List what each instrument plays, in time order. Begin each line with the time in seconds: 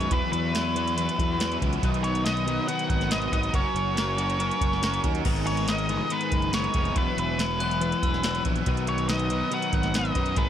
Already playing: overdriven electric guitar G#3 B4, clean electric guitar B3 D#4 A#4, tonewheel organ B3, lead electric guitar C#5
0.01 closed hi-hat
0.11 fingered electric bass E2, clean electric guitar E2 E3 F#3 B3 E4 B4, lead electric guitar B4, tonewheel organ E5 F#5 E6, kick, closed hi-hat
0.32 fingered electric bass E2, lead electric guitar B4, closed hi-hat
0.53 clean electric guitar E2 E3 F#3 B3 E4 B4, snare, closed hi-hat
0.75 clean electric guitar E2 E3 F#3 B3 E4 B4, closed hi-hat
0.88 closed hi-hat
0.96 clean electric guitar E2 E3 F#3 B3 E4 B4, closed hi-hat
1.09 closed hi-hat
1.19 fingered electric bass E2, kick, closed hi-hat
1.39 clean electric guitar E2 E3 F#3 B3 E4 B4, snare, closed hi-hat
1.52 closed hi-hat
1.60 fingered electric bass C#2, clean electric guitar E2 E3 F#3 B3 E4 B4, kick, closed hi-hat
1.73 closed hi-hat
1.82 fingered electric bass B1, clean electric guitar B2 D#3 F#3 B3 D#4 B4, tonewheel organ D#5 D#6, kick, closed hi-hat
1.94 closed hi-hat
2.04 lead electric guitar C#5, closed hi-hat
2.15 closed hi-hat
2.25 clean electric guitar B2 D#3 F#3 B3 D#4 B4, lead electric guitar D#5, snare, closed hi-hat
2.37 closed hi-hat
2.46 clean electric guitar B2 D#3 F#3 B3 D#4 B4, closed hi-hat
2.67 clean electric guitar B2 D#3 F#3 B3 D#4 B4, lead electric guitar F#5, closed hi-hat
2.79 closed hi-hat
2.90 fingered electric bass G#1, lead electric guitar F#5, kick, closed hi-hat
3.01 snare, closed hi-hat
3.10 clean electric guitar B2 D#3 F#3 B3 D#4 B4, lead electric guitar D#5, snare, closed hi-hat
3.22 closed hi-hat
3.31 fingered electric bass G#1, clean electric guitar B2 D#3 F#3 B3 D#4 B4, lead electric guitar D#5, kick, closed hi-hat
3.43 closed hi-hat
3.52 fingered electric bass F#1, clean electric guitar F#3 C#4 F#4 A#4, tonewheel organ A#4 C#5 C#6, lead electric guitar C#5, kick, closed hi-hat
3.74 fingered electric bass F#1, closed hi-hat
3.96 clean electric guitar F#3 C#4 F#4 A#4, snare, closed hi-hat
4.17 clean electric guitar F#3 C#4 F#4 A#4, closed hi-hat
4.30 closed hi-hat
4.39 clean electric guitar F#3 C#4 F#4 A#4, closed hi-hat
4.51 closed hi-hat
4.61 fingered electric bass F#1, kick, closed hi-hat
4.73 snare
4.82 clean electric guitar F#3 C#4 F#4 A#4, snare, closed hi-hat
4.94 closed hi-hat
5.03 fingered electric bass D#2, clean electric guitar F#3 C#4 F#4 A#4, kick, closed hi-hat
5.15 closed hi-hat
5.24 fingered electric bass G#1, clean electric guitar G#2 D#3 G#3 B3 D#4 A#4, tonewheel organ G#5 A#5 D#6, kick, crash
5.36 closed hi-hat
5.47 lead electric guitar C#5, closed hi-hat
5.57 closed hi-hat
5.66 clean electric guitar G#2 D#3 G#3 B3 D#4 A#4, overdriven electric guitar B4, lead electric guitar D#5, snare, closed hi-hat
5.78 closed hi-hat
5.88 clean electric guitar G#2 D#3 G#3 B3 D#4 A#4, overdriven electric guitar B4, closed hi-hat
6.10 clean electric guitar G#2 D#3 G#3 B3 D#4 A#4, lead electric guitar B4, closed hi-hat
6.21 closed hi-hat
6.32 fingered electric bass F#1, kick, closed hi-hat
6.42 closed hi-hat
6.52 clean electric guitar G#2 D#3 G#3 B3 D#4 A#4, overdriven electric guitar B4, lead electric guitar C#5, snare, closed hi-hat
6.64 closed hi-hat
6.74 fingered electric bass F1, clean electric guitar G#2 D#3 G#3 B3 D#4 A#4, overdriven electric guitar B4, kick, closed hi-hat
6.85 closed hi-hat
6.95 fingered electric bass E1, clean electric guitar E2 E3 F#3 B3 E4 B4, tonewheel organ B3 E5 F#5, lead electric guitar B4, kick, closed hi-hat
7.17 fingered electric bass E1, lead electric guitar B4, closed hi-hat
7.37 clean electric guitar E2 E3 F#3 B3 E4 B4, snare, closed hi-hat
7.59 clean electric guitar E2 E3 F#3 B3 E4 B4, glockenspiel F#6, closed hi-hat
7.71 closed hi-hat
7.80 clean electric guitar E2 E3 F#3 B3 E4 B4, closed hi-hat
7.92 closed hi-hat
8.02 fingered electric bass E1, glockenspiel E6, kick, closed hi-hat
8.14 snare
8.23 clean electric guitar E2 E3 F#3 B3 E4 B4, glockenspiel E6, snare, closed hi-hat
8.35 closed hi-hat
8.44 fingered electric bass A#1, clean electric guitar E2 E3 F#3 B3 E4 B4, kick, closed hi-hat
8.56 closed hi-hat
8.66 fingered electric bass B1, clean electric guitar B2 D#3 F#3 B3 D#4 B4, tonewheel organ D#5 D#6, kick, closed hi-hat
8.77 closed hi-hat
8.87 lead electric guitar C#5, closed hi-hat
8.98 closed hi-hat
9.08 clean electric guitar B2 D#3 F#3 B3 D#4 B4, lead electric guitar D#5, snare, closed hi-hat
9.19 closed hi-hat
9.30 clean electric guitar B2 D#3 F#3 B3 D#4 B4, closed hi-hat
9.51 clean electric guitar B2 D#3 F#3 B3 D#4 B4, lead electric guitar F#5, closed hi-hat
9.62 closed hi-hat
9.73 fingered electric bass G#1, lead electric guitar F#5, kick, closed hi-hat
9.83 snare, closed hi-hat
9.94 clean electric guitar B2 D#3 F#3 B3 D#4 B4, lead electric guitar D#5, snare, closed hi-hat
10.05 closed hi-hat
10.15 fingered electric bass F#2, clean electric guitar B2 D#3 F#3 B3 D#4 B4, kick, closed hi-hat
10.26 closed hi-hat
10.35 fingered electric bass G#1, clean electric guitar G#2 D#3 G#3 B3 D#4 A#4, lead electric guitar B4, tonewheel organ G#5 A#5, kick, closed hi-hat